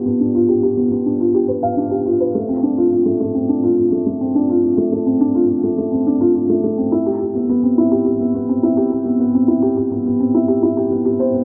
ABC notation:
X:1
M:4/4
L:1/16
Q:1/4=105
K:Ddor
V:1 name="Felt piano"
B, D F G G B, B, D F G B f D G F B | A, C D F F A, A, C D F F A, A, C D F | F A, A, C D F F A, A, C D F F A, A, C | E G G B, B, C E G G B, B, C E G G B, |
B, C E G G B, B, C E G E G B, G c B, |]